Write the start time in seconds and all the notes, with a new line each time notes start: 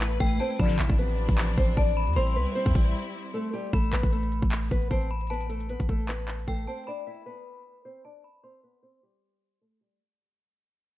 Already playing: A1 A3 B3 E4 B4 A5
0.01 clap, closed hi-hat
0.11 closed hi-hat
0.20 A1 A3 A4 G5, kick, closed hi-hat
0.31 closed hi-hat
0.40 C4 C5 A5
0.50 closed hi-hat
0.56 A1 C3 D3 F3 D4 D5 B5, kick, closed hi-hat
0.61 D4, closed hi-hat
0.70 closed hi-hat
0.79 A1 E4 E5, clap, closed hi-hat
0.90 A1, kick, closed hi-hat
0.98 B3 B4, closed hi-hat
1.09 closed hi-hat
1.18 closed hi-hat
1.29 A1, kick
1.38 clap, closed hi-hat
1.48 closed hi-hat
1.58 A1 C4 C5, kick, closed hi-hat
1.68 closed hi-hat
1.77 A1 D4 D5 A5, kick, closed hi-hat
1.88 closed hi-hat
1.97 B5
2.07 E2, closed hi-hat
2.13 A1 G3 C4 E4 C5 C6, closed hi-hat
2.20 closed hi-hat
2.27 closed hi-hat
2.36 C2 B3 B4, closed hi-hat
2.46 closed hi-hat
2.55 C4 C5, closed hi-hat
2.66 E2, kick, closed hi-hat
2.75 A1 G3 G4, kick, open hi-hat
3.34 A3 A4
3.53 G3 G4
3.73 A1 A3 A4 B5, kick, closed hi-hat
3.84 closed hi-hat
3.93 A1 B3 B4, clap, closed hi-hat
4.03 A1, kick, closed hi-hat
4.12 A3 A4, closed hi-hat
4.23 closed hi-hat
4.32 closed hi-hat
4.42 A1, kick
4.52 clap, closed hi-hat
4.62 closed hi-hat
4.71 A1 B3 B4, kick, closed hi-hat
4.82 closed hi-hat
4.91 A1 C4 C5 A5, kick, closed hi-hat
5.01 closed hi-hat
5.11 B5
5.21 closed hi-hat
5.27 B4 A5, closed hi-hat
5.31 B3, closed hi-hat
5.41 closed hi-hat
5.49 A3 A4, closed hi-hat
5.60 closed hi-hat
5.69 B3 B4, closed hi-hat
5.80 A1, kick, closed hi-hat
5.89 A1 A3 A4, kick, closed hi-hat
6.09 B3 B4, clap, closed hi-hat
6.19 closed hi-hat
6.28 clap, closed hi-hat
6.39 closed hi-hat
6.48 A1 A3 A4 G5, kick, closed hi-hat
6.58 closed hi-hat
6.67 C4 C5 A5
6.78 closed hi-hat
6.84 D5 B5, closed hi-hat
6.89 D4, closed hi-hat
7.07 E4 E5
7.26 B3 B4
7.85 C4 C5
8.05 D4 D5 A5
8.24 B5
8.43 C4 C5 C6
8.63 B3 B4
8.83 C4 C5
9.03 G3 G4
9.61 A3 A4
9.81 G3 G4